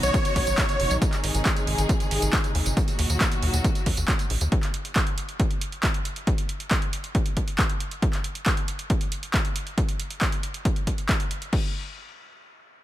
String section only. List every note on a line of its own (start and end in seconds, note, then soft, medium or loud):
0.00 1.00 B2 medium
0.00 4.48 D#3 medium
0.00 1.00 F#3 medium
0.00 4.48 D#4 medium
0.00 1.00 F#4 medium
1.02 2.75 C3 medium
1.02 2.75 G#3 medium
1.02 2.75 G#4 medium
2.77 4.50 A#2 medium
2.77 4.50 F#3 medium
2.77 4.50 F#4 medium